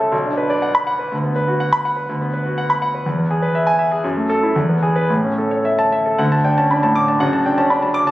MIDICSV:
0, 0, Header, 1, 2, 480
1, 0, Start_track
1, 0, Key_signature, 3, "major"
1, 0, Tempo, 490196
1, 118, Time_signature, 2, 2, 24, 8
1, 3955, Tempo, 511945
1, 4435, Tempo, 546448
1, 5875, Tempo, 500417
1, 7716, End_track
2, 0, Start_track
2, 0, Title_t, "Grand piano"
2, 0, Program_c, 0, 0
2, 0, Control_c, 0, 64, 127
2, 0, Note_on_c, 0, 37, 55
2, 0, Note_on_c, 0, 61, 46
2, 0, Note_on_c, 0, 69, 48
2, 0, Note_on_c, 0, 73, 53
2, 0, Note_on_c, 0, 76, 51
2, 0, Note_on_c, 0, 81, 68
2, 117, Note_on_c, 0, 35, 61
2, 119, Note_off_c, 0, 69, 0
2, 137, Control_c, 0, 64, 0
2, 139, Note_off_c, 0, 37, 0
2, 147, Note_off_c, 0, 73, 0
2, 147, Note_off_c, 0, 76, 0
2, 148, Note_off_c, 0, 61, 0
2, 148, Note_off_c, 0, 81, 0
2, 250, Note_on_c, 0, 62, 45
2, 272, Control_c, 0, 64, 127
2, 366, Note_on_c, 0, 71, 54
2, 444, Note_off_c, 0, 62, 0
2, 489, Note_on_c, 0, 74, 58
2, 563, Note_off_c, 0, 71, 0
2, 610, Note_on_c, 0, 78, 55
2, 685, Note_off_c, 0, 74, 0
2, 732, Note_on_c, 0, 83, 75
2, 806, Note_off_c, 0, 78, 0
2, 850, Note_on_c, 0, 78, 61
2, 926, Note_off_c, 0, 83, 0
2, 971, Note_on_c, 0, 71, 50
2, 1045, Note_off_c, 0, 78, 0
2, 1065, Note_off_c, 0, 35, 0
2, 1093, Note_off_c, 0, 71, 0
2, 1093, Note_on_c, 0, 38, 62
2, 1115, Control_c, 0, 64, 0
2, 1211, Note_on_c, 0, 59, 50
2, 1295, Control_c, 0, 64, 127
2, 1328, Note_on_c, 0, 71, 60
2, 1403, Note_off_c, 0, 59, 0
2, 1448, Note_on_c, 0, 66, 53
2, 1521, Note_off_c, 0, 71, 0
2, 1569, Note_on_c, 0, 78, 61
2, 1640, Note_off_c, 0, 66, 0
2, 1690, Note_on_c, 0, 83, 80
2, 1760, Note_off_c, 0, 78, 0
2, 1813, Note_on_c, 0, 78, 61
2, 1880, Note_off_c, 0, 83, 0
2, 1925, Note_on_c, 0, 71, 54
2, 2001, Note_off_c, 0, 78, 0
2, 2017, Note_off_c, 0, 38, 0
2, 2045, Note_off_c, 0, 71, 0
2, 2047, Note_on_c, 0, 38, 64
2, 2062, Control_c, 0, 64, 0
2, 2167, Note_on_c, 0, 59, 58
2, 2236, Control_c, 0, 64, 127
2, 2287, Note_on_c, 0, 71, 56
2, 2359, Note_off_c, 0, 59, 0
2, 2405, Note_on_c, 0, 66, 57
2, 2479, Note_off_c, 0, 71, 0
2, 2524, Note_on_c, 0, 78, 65
2, 2597, Note_off_c, 0, 66, 0
2, 2642, Note_on_c, 0, 83, 72
2, 2716, Note_off_c, 0, 78, 0
2, 2761, Note_on_c, 0, 78, 65
2, 2834, Note_off_c, 0, 83, 0
2, 2884, Note_on_c, 0, 71, 50
2, 2952, Note_off_c, 0, 78, 0
2, 2973, Note_off_c, 0, 38, 0
2, 2996, Note_on_c, 0, 40, 61
2, 3002, Note_off_c, 0, 71, 0
2, 3016, Control_c, 0, 64, 0
2, 3117, Note_on_c, 0, 59, 47
2, 3154, Control_c, 0, 64, 127
2, 3237, Note_on_c, 0, 68, 56
2, 3307, Note_off_c, 0, 59, 0
2, 3353, Note_on_c, 0, 71, 59
2, 3427, Note_off_c, 0, 68, 0
2, 3476, Note_on_c, 0, 76, 60
2, 3545, Note_off_c, 0, 71, 0
2, 3591, Note_on_c, 0, 80, 69
2, 3666, Note_off_c, 0, 76, 0
2, 3710, Note_on_c, 0, 76, 53
2, 3784, Note_off_c, 0, 80, 0
2, 3835, Note_on_c, 0, 68, 54
2, 3905, Note_off_c, 0, 76, 0
2, 3924, Note_off_c, 0, 40, 0
2, 3956, Note_off_c, 0, 68, 0
2, 3956, Note_on_c, 0, 42, 63
2, 3972, Control_c, 0, 64, 0
2, 4074, Note_on_c, 0, 57, 47
2, 4151, Control_c, 0, 64, 127
2, 4195, Note_on_c, 0, 69, 70
2, 4265, Note_off_c, 0, 57, 0
2, 4319, Note_on_c, 0, 64, 51
2, 4388, Note_off_c, 0, 69, 0
2, 4422, Note_off_c, 0, 42, 0
2, 4439, Note_off_c, 0, 64, 0
2, 4440, Note_on_c, 0, 40, 62
2, 4450, Control_c, 0, 64, 0
2, 4556, Note_on_c, 0, 59, 41
2, 4614, Control_c, 0, 64, 127
2, 4676, Note_on_c, 0, 68, 52
2, 4745, Note_off_c, 0, 59, 0
2, 4792, Note_on_c, 0, 71, 61
2, 4867, Note_off_c, 0, 68, 0
2, 4901, Note_off_c, 0, 40, 0
2, 4913, Note_off_c, 0, 71, 0
2, 4917, Note_on_c, 0, 45, 52
2, 4929, Control_c, 0, 64, 0
2, 5040, Note_on_c, 0, 61, 41
2, 5078, Control_c, 0, 64, 127
2, 5165, Note_on_c, 0, 69, 47
2, 5232, Note_off_c, 0, 61, 0
2, 5278, Note_on_c, 0, 73, 49
2, 5355, Note_off_c, 0, 69, 0
2, 5400, Note_on_c, 0, 76, 50
2, 5471, Note_off_c, 0, 73, 0
2, 5520, Note_on_c, 0, 81, 68
2, 5593, Note_off_c, 0, 76, 0
2, 5641, Note_on_c, 0, 76, 50
2, 5713, Note_off_c, 0, 81, 0
2, 5759, Note_on_c, 0, 69, 47
2, 5830, Note_off_c, 0, 76, 0
2, 5848, Note_off_c, 0, 45, 0
2, 5871, Note_on_c, 0, 78, 59
2, 5872, Note_on_c, 0, 38, 70
2, 5875, Note_off_c, 0, 69, 0
2, 5894, Control_c, 0, 64, 0
2, 5999, Note_on_c, 0, 81, 61
2, 6040, Control_c, 0, 64, 127
2, 6072, Note_off_c, 0, 78, 0
2, 6119, Note_on_c, 0, 62, 50
2, 6119, Note_on_c, 0, 79, 49
2, 6198, Note_off_c, 0, 81, 0
2, 6246, Note_off_c, 0, 79, 0
2, 6246, Note_on_c, 0, 61, 45
2, 6247, Note_on_c, 0, 81, 60
2, 6319, Note_off_c, 0, 62, 0
2, 6370, Note_off_c, 0, 61, 0
2, 6371, Note_on_c, 0, 83, 48
2, 6373, Note_on_c, 0, 62, 58
2, 6442, Note_off_c, 0, 81, 0
2, 6489, Note_on_c, 0, 81, 62
2, 6491, Note_off_c, 0, 83, 0
2, 6492, Note_on_c, 0, 45, 56
2, 6564, Note_off_c, 0, 62, 0
2, 6609, Note_on_c, 0, 86, 77
2, 6681, Note_off_c, 0, 81, 0
2, 6682, Note_off_c, 0, 45, 0
2, 6731, Note_on_c, 0, 81, 64
2, 6733, Note_on_c, 0, 62, 54
2, 6800, Note_off_c, 0, 86, 0
2, 6818, Note_off_c, 0, 38, 0
2, 6835, Note_on_c, 0, 30, 65
2, 6846, Note_on_c, 0, 78, 64
2, 6847, Note_on_c, 0, 42, 69
2, 6850, Note_off_c, 0, 81, 0
2, 6851, Note_off_c, 0, 62, 0
2, 6865, Control_c, 0, 64, 0
2, 6970, Note_on_c, 0, 81, 59
2, 7027, Control_c, 0, 64, 127
2, 7038, Note_off_c, 0, 78, 0
2, 7090, Note_on_c, 0, 79, 52
2, 7091, Note_on_c, 0, 62, 60
2, 7159, Note_off_c, 0, 81, 0
2, 7205, Note_on_c, 0, 61, 56
2, 7207, Note_off_c, 0, 79, 0
2, 7207, Note_on_c, 0, 81, 64
2, 7278, Note_off_c, 0, 62, 0
2, 7322, Note_off_c, 0, 61, 0
2, 7326, Note_on_c, 0, 62, 60
2, 7326, Note_on_c, 0, 83, 52
2, 7393, Note_off_c, 0, 81, 0
2, 7441, Note_off_c, 0, 83, 0
2, 7443, Note_on_c, 0, 81, 57
2, 7444, Note_on_c, 0, 54, 54
2, 7511, Note_off_c, 0, 62, 0
2, 7556, Note_on_c, 0, 86, 91
2, 7630, Note_off_c, 0, 54, 0
2, 7630, Note_off_c, 0, 81, 0
2, 7677, Note_on_c, 0, 62, 59
2, 7679, Note_on_c, 0, 81, 73
2, 7716, Note_off_c, 0, 30, 0
2, 7716, Note_off_c, 0, 42, 0
2, 7716, Note_off_c, 0, 62, 0
2, 7716, Note_off_c, 0, 81, 0
2, 7716, Note_off_c, 0, 86, 0
2, 7716, End_track
0, 0, End_of_file